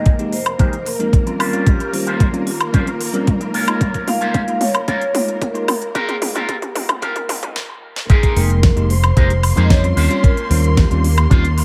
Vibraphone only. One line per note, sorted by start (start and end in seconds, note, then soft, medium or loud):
0.00 0.35 D#5 loud
0.33 0.58 C5 medium
0.59 0.87 C5 loud
0.86 1.69 A#4 loud
1.66 2.49 G4 loud
2.47 3.50 F4 medium
4.08 4.63 F5 loud
4.62 4.87 C#5 medium
4.89 5.44 C#5 loud
5.41 5.97 A#4 loud
5.95 6.51 G#4 loud
6.49 7.04 G4 medium
7.02 7.57 A#4 medium
8.10 8.37 G#4 loud
8.37 8.86 A#4 loud
8.90 9.16 C5 medium
9.17 9.60 C5 loud
9.63 9.70 D#5 medium
9.70 10.26 C#5 loud
10.23 10.79 A#4 loud
10.77 11.27 G4 medium